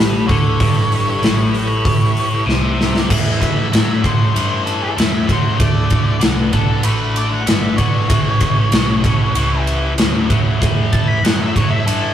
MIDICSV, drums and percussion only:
0, 0, Header, 1, 2, 480
1, 0, Start_track
1, 0, Tempo, 626305
1, 455, Time_signature, 4, 2, 24, 8
1, 9303, End_track
2, 0, Start_track
2, 0, Title_t, "Drums"
2, 0, Note_on_c, 9, 38, 104
2, 74, Note_off_c, 9, 38, 0
2, 225, Note_on_c, 9, 36, 98
2, 227, Note_on_c, 9, 46, 42
2, 301, Note_off_c, 9, 36, 0
2, 304, Note_off_c, 9, 46, 0
2, 462, Note_on_c, 9, 36, 100
2, 463, Note_on_c, 9, 46, 62
2, 538, Note_off_c, 9, 36, 0
2, 539, Note_off_c, 9, 46, 0
2, 705, Note_on_c, 9, 46, 47
2, 782, Note_off_c, 9, 46, 0
2, 941, Note_on_c, 9, 46, 63
2, 953, Note_on_c, 9, 38, 100
2, 1018, Note_off_c, 9, 46, 0
2, 1030, Note_off_c, 9, 38, 0
2, 1183, Note_on_c, 9, 46, 51
2, 1260, Note_off_c, 9, 46, 0
2, 1420, Note_on_c, 9, 36, 105
2, 1421, Note_on_c, 9, 46, 72
2, 1497, Note_off_c, 9, 36, 0
2, 1498, Note_off_c, 9, 46, 0
2, 1660, Note_on_c, 9, 46, 50
2, 1737, Note_off_c, 9, 46, 0
2, 1908, Note_on_c, 9, 38, 60
2, 1985, Note_off_c, 9, 38, 0
2, 2152, Note_on_c, 9, 38, 78
2, 2229, Note_off_c, 9, 38, 0
2, 2270, Note_on_c, 9, 38, 71
2, 2347, Note_off_c, 9, 38, 0
2, 2379, Note_on_c, 9, 36, 107
2, 2381, Note_on_c, 9, 49, 108
2, 2455, Note_off_c, 9, 36, 0
2, 2458, Note_off_c, 9, 49, 0
2, 2619, Note_on_c, 9, 36, 83
2, 2624, Note_on_c, 9, 51, 67
2, 2695, Note_off_c, 9, 36, 0
2, 2701, Note_off_c, 9, 51, 0
2, 2862, Note_on_c, 9, 51, 88
2, 2874, Note_on_c, 9, 38, 105
2, 2938, Note_off_c, 9, 51, 0
2, 2951, Note_off_c, 9, 38, 0
2, 3098, Note_on_c, 9, 36, 80
2, 3104, Note_on_c, 9, 51, 60
2, 3175, Note_off_c, 9, 36, 0
2, 3180, Note_off_c, 9, 51, 0
2, 3342, Note_on_c, 9, 51, 89
2, 3419, Note_off_c, 9, 51, 0
2, 3578, Note_on_c, 9, 51, 59
2, 3655, Note_off_c, 9, 51, 0
2, 3819, Note_on_c, 9, 51, 80
2, 3831, Note_on_c, 9, 38, 104
2, 3896, Note_off_c, 9, 51, 0
2, 3908, Note_off_c, 9, 38, 0
2, 4054, Note_on_c, 9, 36, 79
2, 4057, Note_on_c, 9, 51, 63
2, 4131, Note_off_c, 9, 36, 0
2, 4133, Note_off_c, 9, 51, 0
2, 4291, Note_on_c, 9, 36, 106
2, 4291, Note_on_c, 9, 51, 86
2, 4367, Note_off_c, 9, 36, 0
2, 4368, Note_off_c, 9, 51, 0
2, 4524, Note_on_c, 9, 51, 67
2, 4529, Note_on_c, 9, 36, 84
2, 4601, Note_off_c, 9, 51, 0
2, 4606, Note_off_c, 9, 36, 0
2, 4761, Note_on_c, 9, 51, 91
2, 4773, Note_on_c, 9, 38, 111
2, 4837, Note_off_c, 9, 51, 0
2, 4850, Note_off_c, 9, 38, 0
2, 5003, Note_on_c, 9, 51, 67
2, 5006, Note_on_c, 9, 36, 79
2, 5079, Note_off_c, 9, 51, 0
2, 5083, Note_off_c, 9, 36, 0
2, 5237, Note_on_c, 9, 51, 95
2, 5314, Note_off_c, 9, 51, 0
2, 5487, Note_on_c, 9, 51, 70
2, 5564, Note_off_c, 9, 51, 0
2, 5725, Note_on_c, 9, 51, 96
2, 5737, Note_on_c, 9, 38, 106
2, 5801, Note_off_c, 9, 51, 0
2, 5814, Note_off_c, 9, 38, 0
2, 5963, Note_on_c, 9, 51, 67
2, 5965, Note_on_c, 9, 36, 78
2, 6040, Note_off_c, 9, 51, 0
2, 6042, Note_off_c, 9, 36, 0
2, 6206, Note_on_c, 9, 36, 108
2, 6207, Note_on_c, 9, 51, 97
2, 6283, Note_off_c, 9, 36, 0
2, 6283, Note_off_c, 9, 51, 0
2, 6442, Note_on_c, 9, 51, 69
2, 6446, Note_on_c, 9, 36, 86
2, 6518, Note_off_c, 9, 51, 0
2, 6523, Note_off_c, 9, 36, 0
2, 6682, Note_on_c, 9, 51, 92
2, 6694, Note_on_c, 9, 38, 107
2, 6759, Note_off_c, 9, 51, 0
2, 6771, Note_off_c, 9, 38, 0
2, 6928, Note_on_c, 9, 36, 83
2, 6930, Note_on_c, 9, 51, 68
2, 7004, Note_off_c, 9, 36, 0
2, 7007, Note_off_c, 9, 51, 0
2, 7168, Note_on_c, 9, 51, 89
2, 7244, Note_off_c, 9, 51, 0
2, 7412, Note_on_c, 9, 51, 64
2, 7489, Note_off_c, 9, 51, 0
2, 7648, Note_on_c, 9, 51, 93
2, 7660, Note_on_c, 9, 38, 106
2, 7725, Note_off_c, 9, 51, 0
2, 7737, Note_off_c, 9, 38, 0
2, 7894, Note_on_c, 9, 36, 84
2, 7896, Note_on_c, 9, 51, 61
2, 7971, Note_off_c, 9, 36, 0
2, 7973, Note_off_c, 9, 51, 0
2, 8137, Note_on_c, 9, 36, 102
2, 8144, Note_on_c, 9, 51, 87
2, 8214, Note_off_c, 9, 36, 0
2, 8221, Note_off_c, 9, 51, 0
2, 8374, Note_on_c, 9, 51, 65
2, 8376, Note_on_c, 9, 36, 78
2, 8451, Note_off_c, 9, 51, 0
2, 8452, Note_off_c, 9, 36, 0
2, 8620, Note_on_c, 9, 51, 87
2, 8632, Note_on_c, 9, 38, 103
2, 8696, Note_off_c, 9, 51, 0
2, 8709, Note_off_c, 9, 38, 0
2, 8859, Note_on_c, 9, 36, 81
2, 8862, Note_on_c, 9, 51, 63
2, 8936, Note_off_c, 9, 36, 0
2, 8939, Note_off_c, 9, 51, 0
2, 9102, Note_on_c, 9, 51, 93
2, 9178, Note_off_c, 9, 51, 0
2, 9303, End_track
0, 0, End_of_file